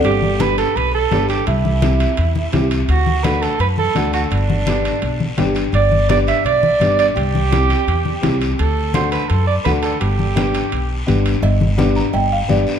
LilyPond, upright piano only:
\new Staff \with { instrumentName = "Upright piano" } { \time 4/4 \key g \major \tempo 4 = 169 << { r1 | r1 | r1 | r2. g''4 |
r1 | r1 | r1 | r1 |
r1 | } \\ { r4 <b d' g'>8 r4. <b d' g'>8 r8 | r4 <c' e' g'>8 r4. <c' e' g'>8 r8 | r4 <a d' fis'>8 r4. <a d' fis'>8 r8 | r4 <b d' g'>8 r4. <b d' g'>8 r8 |
r4 <b d' g'>8 r4. <b d' g'>8 r8 | r4 <c' e' g'>8 r4. <c' e' g'>8 r8 | r4 <a d' fis'>8 r4. <a d' fis'>8 r8 | r4 <b d' g'>8 r4. <b d' g'>8 r8 |
r4 <b d' g'>8 r4. <b d' g'>8 r8 | } >> }